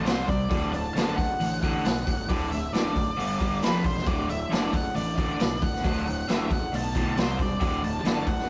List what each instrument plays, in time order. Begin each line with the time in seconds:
0.05 fingered electric bass C2, overdriven electric guitar C3 G3 C4, lead electric guitar C5, snare, open hi-hat
0.27 fingered electric bass C2, overdriven electric guitar C3 G3, lead electric guitar D5, kick, open hi-hat
0.49 fingered electric bass D1, overdriven electric guitar D2 A2 D3, kick, open hi-hat
0.72 overdriven electric guitar D2 A2, lead electric guitar A5, open hi-hat
0.94 fingered electric bass F#1, overdriven electric guitar D2 A2 D3, lead electric guitar A5, snare, open hi-hat
1.16 overdriven electric guitar D2 A2, lead electric guitar F#5, kick, open hi-hat
1.40 fingered electric bass A1, overdriven electric guitar D2 A2, open hi-hat
1.62 overdriven electric guitar D2 A2 D3, lead electric guitar F#5, kick, open hi-hat
1.85 fingered electric bass B1, overdriven electric guitar D2 A2, snare, open hi-hat
2.07 fingered electric bass G1, overdriven electric guitar D2 A2, kick, open hi-hat
2.28 fingered electric bass D1, overdriven electric guitar D2 A2 D3, lead electric guitar D5, kick, open hi-hat
2.51 overdriven electric guitar D2 A2, lead electric guitar E5, open hi-hat
2.73 fingered electric bass F#1, overdriven electric guitar D2 A2 D3, lead electric guitar D5, snare, open hi-hat
2.95 overdriven electric guitar D2 A2, kick, open hi-hat
3.17 fingered electric bass G1, overdriven electric guitar G2 D3 G3, open hi-hat
3.39 overdriven electric guitar G2 D3 G3, kick, open hi-hat
3.62 fingered electric bass F1, overdriven electric guitar F2 C3 F3, lead electric guitar B4, snare, open hi-hat
3.84 fingered electric bass E1, overdriven electric guitar F2 C3, lead electric guitar C5, kick, open hi-hat
3.97 snare
4.06 fingered electric bass D1, overdriven electric guitar D2 A2 D3, lead electric guitar D5, kick, open hi-hat
4.29 overdriven electric guitar D2 A2, lead electric guitar E5, open hi-hat
4.50 fingered electric bass F#1, overdriven electric guitar D2 A2 D3, snare, open hi-hat
4.54 lead electric guitar D5
4.72 overdriven electric guitar D2 A2, lead electric guitar F#5, kick, open hi-hat
4.95 fingered electric bass A1, overdriven electric guitar D2 A2, lead electric guitar D5, open hi-hat
5.16 overdriven electric guitar D2 A2 D3, lead electric guitar D5, kick, open hi-hat
5.40 fingered electric bass B1, overdriven electric guitar D2 A2, snare, open hi-hat
5.62 fingered electric bass G1, overdriven electric guitar D2 A2, lead electric guitar F#5, kick, open hi-hat
5.75 snare
5.84 fingered electric bass D1, overdriven electric guitar D2 A2 D3, kick, open hi-hat
6.05 overdriven electric guitar D2 A2, open hi-hat
6.28 fingered electric bass F#1, overdriven electric guitar D2 A2 D3, lead electric guitar E5, snare, open hi-hat
6.50 overdriven electric guitar D2 A2, lead electric guitar F#5, kick, open hi-hat
6.72 fingered electric bass B1, overdriven electric guitar D2 A2, lead electric guitar A5, open hi-hat
6.95 overdriven electric guitar D2 A2 D3, kick, open hi-hat
7.17 fingered electric bass C2, overdriven electric guitar C3 G3 C4, lead electric guitar C5, snare, open hi-hat
7.39 fingered electric bass E1, overdriven electric guitar C3 G3, lead electric guitar D5, kick, open hi-hat
7.59 fingered electric bass D1, overdriven electric guitar D2 A2 D3, kick, open hi-hat
7.83 overdriven electric guitar D2 A2, lead electric guitar A5, open hi-hat
8.04 fingered electric bass F#1, overdriven electric guitar D2 A2 D3, lead electric guitar A5, snare, open hi-hat
8.27 overdriven electric guitar D2 A2, lead electric guitar F#5, kick, open hi-hat
8.39 snare